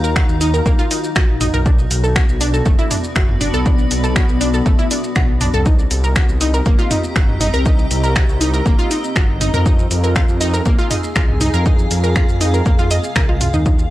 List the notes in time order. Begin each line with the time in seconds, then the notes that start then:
Already playing: D#2 D#4 F#4 F5 A#5
0.04 A#4 A#5, shaker
0.16 F#4 F#5, finger snap, kick, shaker
0.29 D#2, shaker
0.41 D#4 D#5, open hi-hat, shaker
0.54 A#4 A#5, shaker
0.66 A#1 A#3 A#4, kick, shaker
0.79 F4 F5, shaker
0.91 D#4 D#5, open hi-hat, shaker
1.04 shaker
1.16 A#1 F#4 F#5, finger snap, kick, shaker
1.41 D#4 D#5, mid tom, open hi-hat, shaker
1.54 B1 A#4 A#5, mid tom, shaker
1.66 B3 D4 D5, kick, shaker
1.79 shaker
1.91 B1, open hi-hat, shaker
2.04 A4 A5, shaker
2.16 F#4 F#5, finger snap, kick, shaker
2.29 B1 D5, shaker
2.41 D4 D5 B5, open hi-hat, shaker
2.54 A4 A5, shaker
2.66 F#1 A3 A4, kick, shaker
2.79 E4 E5, shaker
2.91 D4 D5, mid tom, open hi-hat, shaker
3.04 shaker
3.16 F#1 F#4 F#5, finger snap, kick, shaker
3.29 mid tom
3.41 D4 D5, mid tom, open hi-hat, shaker
3.54 B1 A4 A5, shaker
3.66 D4 D5, kick, shaker
3.79 shaker
3.91 B1, open hi-hat, shaker
4.04 A4 A5, shaker
4.16 F#4 F#5, finger snap, kick, shaker
4.29 B1, shaker
4.41 D4 D5, open hi-hat, shaker
4.54 A4 A5, shaker
4.66 F#1 A3 A4, kick, shaker
4.79 E4 E5, shaker
4.91 D4 D5, open hi-hat, shaker
5.04 shaker
5.16 B1 F#4 F#5, finger snap, kick, shaker
5.41 D4 D5, mid tom, open hi-hat, shaker
5.54 C2 A4 A5, mid tom, shaker
5.66 C4 D#4 D#5, kick, shaker
5.79 G4, shaker
5.91 C2, open hi-hat, shaker
6.04 A#4 A#5, shaker
6.16 F#4 F#5, finger snap, kick, shaker
6.21 D#5
6.29 C2, shaker
6.41 D#4 D#5, open hi-hat, shaker
6.54 A#4 A#5, shaker
6.66 G1 A#3 A#4, kick, shaker
6.79 F4 F5, shaker
6.91 D#4 D#5, mid tom, open hi-hat, shaker
7.04 shaker
7.16 G1 F#4 F#5, finger snap, kick, shaker
7.29 mid tom
7.41 D#4 D#5, mid tom, open hi-hat, shaker
7.54 C2 A#4 A#5, shaker
7.66 D#4 D#5, kick, shaker
7.79 shaker
7.91 C2, open hi-hat, shaker
8.04 A#4 A#5, shaker
8.16 F#4 F#5, finger snap, kick, shaker
8.29 C2, shaker
8.41 D#4 D#5, open hi-hat, shaker
8.54 A#4 A#5, shaker
8.66 G1 A#3 A#4, kick, shaker
8.79 F4 F5, shaker
8.91 D#4 D#5, open hi-hat, shaker
9.04 shaker
9.16 G1 F#4 F#5, finger snap, kick, shaker
9.41 D#4 D#5, mid tom, open hi-hat, shaker
9.54 F2 A#4 A#5, mid tom, shaker
9.66 D#4 D#5, kick, shaker
9.79 G#5, shaker
9.91 F2, open hi-hat, shaker
9.96 G#4
10.04 A#4 A#5, shaker
10.16 F4 F5, finger snap, kick, shaker
10.29 F2, shaker
10.38 D#4 D#5 F5, open hi-hat, shaker
10.54 A#4 A#5, shaker
10.66 C2 A#3 A#4, kick, shaker
10.79 F4 F5, shaker
10.91 D#4 D#5, mid tom, open hi-hat, shaker
11.04 shaker
11.16 C2 F4 F5, finger snap, kick, shaker
11.29 mid tom
11.41 D#4 D#5, mid tom, open hi-hat, shaker
11.54 F2 A#4 A#5, shaker
11.66 D#4 D#5, kick, shaker
11.79 shaker
11.91 F2, open hi-hat, shaker
12.04 A#4 A#5, shaker
12.16 F4 F5, finger snap, kick, shaker
12.29 F2, shaker
12.41 D#4 D#5, open hi-hat, shaker
12.54 A#4 A#5, shaker
12.66 F2 A#3 A#4, kick, shaker
12.79 F4 F5, shaker
12.91 D#5 D#6, open hi-hat, shaker
13.04 shaker
13.16 C2 A#4 A#5, finger snap, kick, shaker
13.29 F4 F5
13.41 F4 F5, mid tom, open hi-hat, shaker
13.54 D#2 D#4 D#5, mid tom, shaker
13.66 D#4 D#5, kick, shaker
13.79 shaker